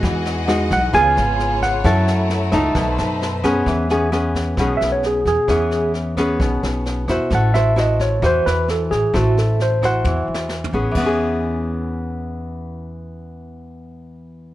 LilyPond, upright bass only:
\new Staff \with { instrumentName = "Upright bass" } { \clef bass \time 4/4 \key e \major \tempo 4 = 132 e,4. b,,8 cis,8 gis,,4. | fis,4. cis,8 b,,8 fis,4. | e,2 b,,8 b,,4 e,16 r16 | e,2 b,,8 b,,4 e,16 r16 |
a,,2 e,8 e,4 a,,16 r16 | a,,2 e,8 e,4 a,,16 r16 | e,1~ | e,1 | }